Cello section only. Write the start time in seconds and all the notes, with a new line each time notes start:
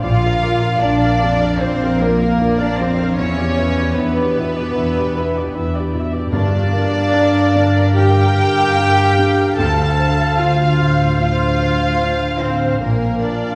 0.03 F4
0.81 D4
1.60 C4
2.00 A#3
2.60 D4
2.80 C4
3.18 C#4
3.97 B3
6.33 D4
7.97 G4
9.58 A4
10.39 F4
11.20 F4
12.42 C4
12.82 A#3
13.22 D4